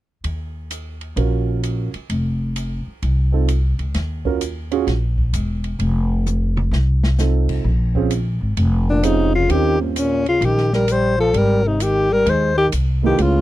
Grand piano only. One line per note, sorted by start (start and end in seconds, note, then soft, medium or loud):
1.17 1.88 C#4 soft
1.17 1.88 F4 soft
1.17 1.88 F#4 soft
1.17 1.88 A#4 soft
3.32 3.47 C4 soft
3.32 3.47 D#4 soft
3.32 3.47 F4 soft
3.32 3.48 A4 medium
4.25 4.40 C#4 medium
4.25 4.40 F4 soft
4.25 4.40 F#4 soft
4.25 4.40 A#4 medium
4.72 4.86 C#4 medium
4.72 4.86 F4 medium
4.72 4.86 F#4 medium
4.72 4.87 G#4 medium
7.19 7.65 C4 soft
7.19 7.65 D#4 soft
7.19 7.65 F4 soft
7.19 7.66 A4 soft
7.95 8.09 C4 medium
7.95 8.10 C#4 medium
7.95 8.10 F4 soft
7.95 8.10 G#4 medium
9.03 9.30 C4 medium
9.03 9.31 C#4 medium
9.03 9.31 F4 medium
9.03 9.31 G#4 medium
9.49 10.78 C4 medium
9.49 10.79 C#4 soft
9.49 10.79 F4 soft
9.49 10.79 G4 medium
13.03 13.41 A3 medium
13.03 13.41 B3 soft
13.03 13.41 E4 soft
13.03 13.41 F4 medium